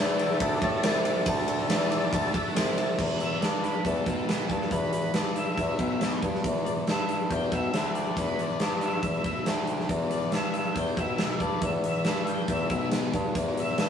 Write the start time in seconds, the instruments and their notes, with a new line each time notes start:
Already playing: bassoon E2, distorted electric guitar E3 E4, tonewheel organ A3 D4
0.00 tonewheel organ A4 C5
0.18 tonewheel organ A3 D4 A4 D5, ride
0.39 bassoon D2, distorted electric guitar D3 D4, tonewheel organ A3 D4 A4 D5, kick, ride
0.62 bassoon A2, distorted electric guitar A3 A4, tonewheel organ A3 D4 A4 D5, kick, ride
0.83 bassoon C2, distorted electric guitar C3 C4, tonewheel organ A3 D4 A4 D5, snare, ride
1.05 tonewheel organ A3 D4 A4 D5, ride
1.26 bassoon D2, distorted electric guitar D3 D4, tonewheel organ A3 D4 A4 D5, kick, ride
1.47 tonewheel organ A3 D4 A4 D5, ride
1.68 bassoon E2, distorted electric guitar E3 E4, tonewheel organ A3 D4 A4 D5, snare, ride
1.89 tonewheel organ A3 D4 A4 D5, ride
2.11 bassoon D2, distorted electric guitar D3 D4, tonewheel organ A3 D4 A4 D5, kick, ride
2.33 distorted electric guitar A3 A4, tonewheel organ A3 D4 A4 D5 E5, kick, ride
2.47 tonewheel organ F#5
2.54 bassoon C2, distorted electric guitar C3 C4, tonewheel organ A3 D4 A4 D5 G5, snare, ride
2.77 tonewheel organ A3 D4 A4 D5 A5, ride
2.97 distorted electric guitar E2 E3, bassoon E2, kick, crash
3.20 lead electric guitar E5, closed hi-hat
3.40 distorted electric guitar G2 G3, bassoon G2, lead electric guitar D5, snare, closed hi-hat
3.63 lead electric guitar B4, closed hi-hat
3.83 distorted electric guitar E2 E3, bassoon E2, lead electric guitar A4, kick, closed hi-hat
4.05 bassoon B1, distorted electric guitar B2 B3, lead electric guitar A4, kick, closed hi-hat
4.27 lead electric guitar B4, snare, closed hi-hat
4.45 lead electric guitar G#4
4.49 distorted electric guitar G2 G3, bassoon G2, lead electric guitar A4, kick, closed hi-hat
4.61 snare
4.70 distorted electric guitar E2 E3, bassoon E2, lead electric guitar B4, kick, closed hi-hat
4.92 lead electric guitar B4, closed hi-hat
5.14 bassoon G2, distorted electric guitar G2 G3, lead electric guitar D5, snare, closed hi-hat
5.35 lead electric guitar E5, closed hi-hat
5.57 distorted electric guitar E2 E3, bassoon E2, kick, closed hi-hat
5.78 bassoon B1, distorted electric guitar B2 B3, kick, closed hi-hat
6.01 snare, closed hi-hat
6.22 distorted electric guitar G2 G3, bassoon G2, kick, closed hi-hat
6.34 snare
6.43 distorted electric guitar E2 E3, bassoon E2, kick, closed hi-hat
6.65 lead electric guitar D5, closed hi-hat
6.87 distorted electric guitar G2 G3, bassoon G2, lead electric guitar E5, snare, closed hi-hat
7.09 lead electric guitar E5, closed hi-hat
7.30 distorted electric guitar E2 E3, bassoon E2, lead electric guitar G5, kick, closed hi-hat
7.51 bassoon B1, distorted electric guitar B2 B3, lead electric guitar E5, kick, closed hi-hat
7.72 bassoon D2, distorted electric guitar D3 D4, snare, closed hi-hat
7.94 lead electric guitar D5, closed hi-hat
8.16 distorted electric guitar E2 E3, bassoon E2, lead electric guitar B4, kick, closed hi-hat
8.39 lead electric guitar D5, closed hi-hat
8.58 distorted electric guitar G2 G3, bassoon G2, snare, closed hi-hat
8.81 lead electric guitar E5, closed hi-hat
9.03 distorted electric guitar E2 E3, bassoon E2, kick, closed hi-hat
9.07 lead electric guitar E5
9.24 distorted electric guitar B2 B3, kick, closed hi-hat
9.46 bassoon D2, distorted electric guitar D3 D4, snare, closed hi-hat
9.67 closed hi-hat
9.80 snare
9.89 bassoon E2, distorted electric guitar E2 E3, kick, closed hi-hat
10.11 lead electric guitar D5, closed hi-hat
10.31 distorted electric guitar G2 G3, bassoon G2, lead electric guitar E5, snare, closed hi-hat
10.54 lead electric guitar E5, closed hi-hat
10.74 distorted electric guitar E2 E3, bassoon E2, lead electric guitar G5, kick, closed hi-hat
10.97 bassoon B1, distorted electric guitar B2 B3, lead electric guitar E5, kick, closed hi-hat
11.18 snare, closed hi-hat
11.39 distorted electric guitar G2 G3, bassoon G2, lead electric guitar D5, kick, closed hi-hat
11.61 distorted electric guitar E2 E3, bassoon E2, lead electric guitar E5, kick, closed hi-hat
11.84 lead electric guitar E5, closed hi-hat
12.05 distorted electric guitar G2 G3, bassoon G2, snare, closed hi-hat
12.27 lead electric guitar G5, closed hi-hat
12.48 distorted electric guitar E2 E3, bassoon E2, lead electric guitar E5, kick, closed hi-hat
12.70 bassoon B1, distorted electric guitar B2 B3, kick, closed hi-hat
12.91 snare, closed hi-hat
13.13 distorted electric guitar G2 G3, bassoon G2, kick, closed hi-hat
13.35 distorted electric guitar E2 E3, bassoon E2, kick, closed hi-hat
13.57 lead electric guitar E5, closed hi-hat
13.78 distorted electric guitar G2 G3, bassoon G2, snare, closed hi-hat